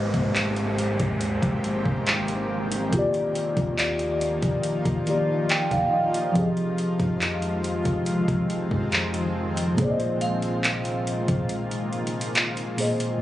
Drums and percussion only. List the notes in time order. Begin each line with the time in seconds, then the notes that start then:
0.14 kick, closed hi-hat
0.36 clap, closed hi-hat
0.56 closed hi-hat
0.78 closed hi-hat
1.00 kick, closed hi-hat
1.21 closed hi-hat
1.43 kick, closed hi-hat
1.64 closed hi-hat
1.85 kick
2.06 clap, closed hi-hat
2.28 closed hi-hat
2.72 closed hi-hat
2.93 kick, closed hi-hat
3.14 closed hi-hat
3.35 closed hi-hat
3.57 kick, closed hi-hat
3.79 clap, closed hi-hat
3.99 closed hi-hat
4.21 closed hi-hat
4.42 kick, closed hi-hat
4.63 closed hi-hat
4.85 kick, closed hi-hat
5.07 closed hi-hat
5.49 clap, closed hi-hat
5.71 kick, closed hi-hat
6.14 closed hi-hat
6.35 kick, closed hi-hat
6.57 closed hi-hat
6.78 closed hi-hat
7.00 kick, closed hi-hat
7.21 clap, closed hi-hat
7.42 closed hi-hat
7.64 closed hi-hat
7.85 kick, closed hi-hat
8.06 closed hi-hat
8.28 kick, closed hi-hat
8.50 closed hi-hat
8.71 kick
8.92 clap, closed hi-hat
9.14 closed hi-hat
9.57 closed hi-hat
9.78 kick, closed hi-hat
10.00 closed hi-hat
10.21 closed hi-hat
10.42 closed hi-hat
10.64 clap, closed hi-hat
10.85 closed hi-hat
11.07 closed hi-hat
11.28 kick, closed hi-hat
11.49 closed hi-hat
11.71 closed hi-hat
11.93 closed hi-hat
12.07 closed hi-hat
12.21 closed hi-hat
12.35 clap, closed hi-hat
12.57 closed hi-hat
12.78 open hi-hat
13.00 closed hi-hat